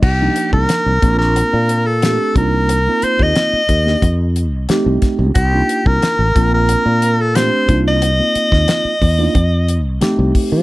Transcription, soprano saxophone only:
X:1
M:4/4
L:1/16
Q:1/4=90
K:Cdor
V:1 name="Soprano saxophone"
G3 B4 B4 A3 B2- | B2 c e6 z6 z | G3 B4 B4 A c3 e- | e8- e3 z4 z |]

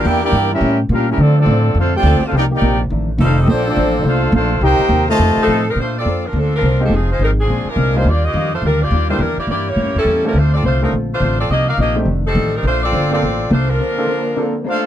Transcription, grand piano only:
X:1
M:4/4
L:1/8
Q:"Swing" 1/4=209
K:Bb
V:1 name="Grand piano"
z8 | z8 | z8 | z8 |
z8 | z6 z [_A,CEFG] | z6 z [G,B,DEF] | z6 z [G,B,D=EG] |
z6 z [A,CDFA] | z3 [A,CDFA] z4 | z3 [A,CDEG] z4 | z3 [B,CDFA] z4 |
z [B,CDFA] z2 [B,CDFA] z3 |]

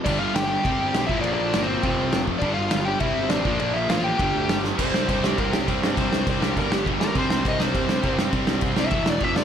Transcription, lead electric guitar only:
X:1
M:4/4
L:1/8
Q:1/4=203
K:C
V:1 name="Lead electric guitar"
[Dd] [Ff] [Gg] [Gg]4 [Ee] | [Dd] [Dd]2 [Cc]4 z | [Dd] [Ff]2 [Gg] [Ee]2 [Dd]2 | [Dd] [Ee] [Ff] [Gg]4 z |
c2 c G _B G z2 | c2 c G _B G z B | c2 _e c4 z | z3 e2 d e d |]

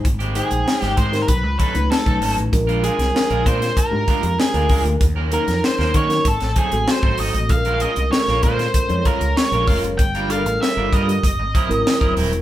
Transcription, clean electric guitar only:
X:1
M:4/4
L:1/16
Q:1/4=97
K:Bbdor
V:1 name="Clean electric guitar"
z [E,A,CG] [E,A,CG] z2 [E,A,CG] [E,A,CG] z3 [^F,^C^D=A] z2 [F,CDA] [F,CDA] z | z [A,=DFB] [A,DFB] z2 [A,DFB] [A,DFB] z3 [A,DFB] z2 [A,DFB] [A,DFB] z | z [B,D_GB] [B,DGB] z2 [B,DGB] [B,DGB] z3 [_G,CE=A] z2 [G,CEA] [G,CEA] z | z [A,DFB] [A,DFB] z2 [A,DFB] [A,DFB] z3 [A,DFB] z2 [A,DFB] [A,DFB] z |
z [G,=DFB] [G,DFB] z2 [G,DFB] [G,DFB] z3 [_G,C_FB] z2 [G,CFB] [G,CFB] z |]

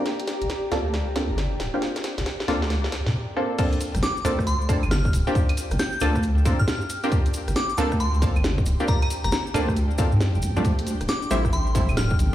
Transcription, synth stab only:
X:1
M:4/4
L:1/16
Q:"Swing 16ths" 1/4=136
K:Gm
V:1 name="Synth stab"
[B,CDFG]6 [B,CDFA] z3 [B,CDFA] z4 [B,CDFG]- | [B,CDFG]6 [B,CDFA] z6 z [B,CDFA]2 | [B,CDFA]6 [B,CDFA] z3 [B,CDFA] z4 [B,CDFG]- | [B,CDFG]6 [B,CDFA] z3 [B,CDFA] z4 [B,CDFG]- |
[B,CDFG]6 [B,CDFA] z3 [B,CDFA] z4 [B,CDFG]- | [B,CDFG]6 [B,CDFA] z3 [B,CDFA] z4 [F,G,A,CD]- | [F,G,A,CD]6 [F,G,A,C=E] z3 [F,G,A,CE] z4 z |]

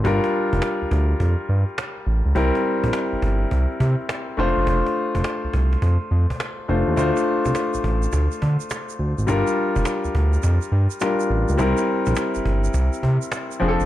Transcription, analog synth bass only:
X:1
M:4/4
L:1/16
Q:"Swing 16ths" 1/4=104
K:Cmix
V:1 name="Analog synth bass" clef=bass
G,,, z2 F,,, z D,, D,,2 F,, z G,, z3 A,,, ^C,, | C,, z2 B,,, z G,,, G,,,2 C,, z C, z3 F,,, ^F,,, | F,,, z2 F,,, z C,, C,,2 F,, z F,, z3 F,,, _E,, | D,, z2 C,, z A,,, A,,,2 D,, z D, z3 D,, ^G,,, |
G,,, z2 F,,, z D,, D,,2 F,, z G,, z3 A,,, ^C,, | C,, z2 B,,, z G,,, G,,,2 C,, z C, z3 F,,, ^F,,, |]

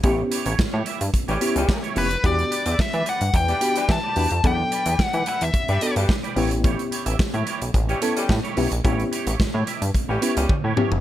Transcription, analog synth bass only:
X:1
M:4/4
L:1/16
Q:1/4=109
K:Amix
V:1 name="Analog synth bass" clef=bass
A,,,2 z A,,, A,, A,, z G,, z A,,, z C,, z2 =F,,,2 | E,,2 z E,, E, E, z G,, E,,2 z2 E, z E,, =F,, | E,,2 z E,, E, E, z E,, z G,, z G,, z2 A,,,2- | A,,,2 z A,,, A,, A,, z B,,, A,,,2 z2 A,, z B,,, ^A,,, |
A,,,2 z A,,, A,, A,, z G,, z A,,, z C,, z A,, z =F,,, |]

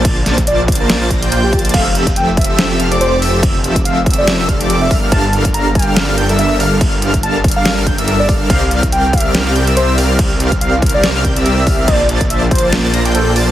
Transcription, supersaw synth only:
X:1
M:4/4
L:1/16
Q:"Swing 16ths" 1/4=142
K:F
V:1 name="Supersaw synth"
z6 z [B,Fcda]2 [B,Fcda] [B,cdb] [B,Fcdg] [B,Fcdg]2 [B,Fcda]2 | [F,CGAe]6- [F,CGAe] [F,CGAe]2 [F,CGAe] [F,CGAf] [F,CGAd] [F,CGAd]2 [F,CGAe]2 | [F,CAe]6- [F,CAe] [F,CGAe]2 [F,CGAe] [GA] [F,CGAd] [F,CGAd]2 [G,DABf]2 | [G,DABf]6- [G,DABf] [G,DABf]2 [G,DABf] [G,DABg] [G,DABe] [G,DABe]2 [G,DABf]2 |
z6 z [G,DABf]2 [G,DABf] [G,DABg] [G,DABe] [G,DABe]2 [G,DABf]2 | [CGBdf]6- [CGBdf] [CGBdf]2 [CGBdf] [CGBdg] [CGBde] [CGBde]2 [CGBdf]2 | [CGBdf]6- [CGBdf] [CGBdf]2 [CGBdf] [CGBdg] [CGBde] [CGBde]2 G2 | [B,Fcda]6- [B,Fcda] [B,Fcda]2 [B,Fcda] [B,Fcdb] [B,Fcdg] [B,Fcdg]2 [B,Fcda]2 |]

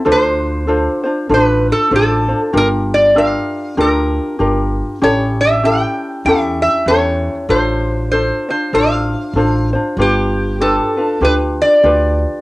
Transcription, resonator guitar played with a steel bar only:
X:1
M:4/4
L:1/16
Q:"Swing" 1/4=97
K:Ddor
V:1 name="Resonator guitar played with a steel bar"
c8 B2 A2 A3 z | _B2 d2 f4 B6 z2 | ^c2 e2 g4 e2 e2 c3 z | c4 c2 c2 f6 z2 |
G4 A4 B2 d4 z2 |]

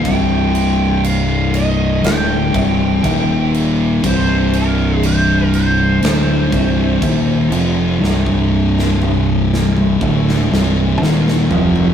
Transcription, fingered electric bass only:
X:1
M:4/4
L:1/8
Q:1/4=60
K:Cm
V:1 name="Fingered electric bass" clef=bass
C,,,4 D,,, C,,, E,,,2 | C,,,4 D,,, C,,, E,,, F,,, | C,,,4 D,,, C,,, E,,, F,,, |]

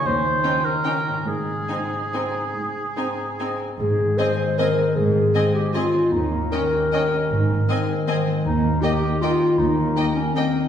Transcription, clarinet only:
X:1
M:3/4
L:1/8
Q:1/4=153
K:Ab
V:1 name="Clarinet"
z6 | z6 | z6 | A2 c2 B2 |
A3 G F2 | E2 B4- | B4- B z | E2 G2 F2 |
E3 D C2 |]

